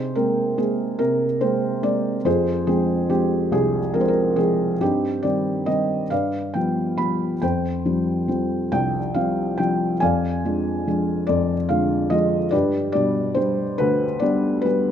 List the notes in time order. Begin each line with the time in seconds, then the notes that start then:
Already playing: C3 D#4 G#4 C5
0.15 G#3 A#3 C4 A#4
0.58 G#3 A#3 C4 G#4
0.99 C3 A#4
1.41 G#3 A#3 C4 C5
1.82 G#3 A#3 C4 D5
2.25 F2 F4 G#4 C5
2.67 F3 G#3 C4 G#4
3.10 F3 G#3 C4 G4
3.52 C2 G#4
3.94 F3 G#3 C4 A#4
4.01 C5
4.08 A#4
4.36 F3 G#3 C4 G#4
4.81 G2 C4 D#4 G4
5.23 D#3 G3 C4 D5
5.66 D#3 G3 C4 D#5
6.10 G2 B4 D5 F5
6.54 F3 G3 B3 G5
6.98 F3 G3 B3 B5
7.42 F2 C5 G5
7.85 F3 G3 C4
8.28 F3 G3 C4
8.72 C2 G5
9.14 F3 G3 C4 F5
9.58 F3 G3 C4 G5
10.00 F2 D5 F5 G#5
10.45 F3 G#3 D4
10.87 F3 G#3 D4
11.27 F2 D5
11.69 D3 F3 G#3 F5
12.10 F3 G#3 F4 D#5
12.51 G2 G4 B4 D5
12.92 B2 G3 D4 D5
13.35 G3 D4 C5
13.78 D2 B4
14.19 G3 B3 D4 D5
14.62 G3 B3 B4
14.66 D4